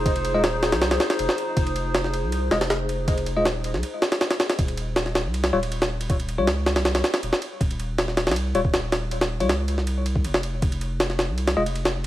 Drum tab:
RD |x-x-x---x---x-x-x-x-x-x-x---x---|x-x-x---x---x---x---x-x-x---x---|x-x-x---x---x---x---x-x-x-x-x-x-|x-x-x---x---x---x-x---x-x-x---x-|
SD |--------o---o-o-o-o-o-o---o-----|--------o-o---------o-o-o-------|--------o-----o-----o-o-o-o-o-o-|--------o-o-o-----o-------o-----|
BD |o-------------------------------|o-------------------------------|o-------------------------------|o-------------------------------|

RD |x-x-x---x---x-x-x-x-x-x-x---x---|x-x-x---x---x-xxx---x---x---x---|x-x---x-x---x---x---x---x---x---|x-x-x---x---x---x-x---x-x-x-----|
SD |--------o---o-o-o-o-o-o---o-----|--------o-o-o-oo--------o---o---|--o-----o-----o-----------o-----|--------o-o-o-----o-------o-----|
BD |o-------------------------------|o---------------------o---------|----------------------o---------|o-------------------------------|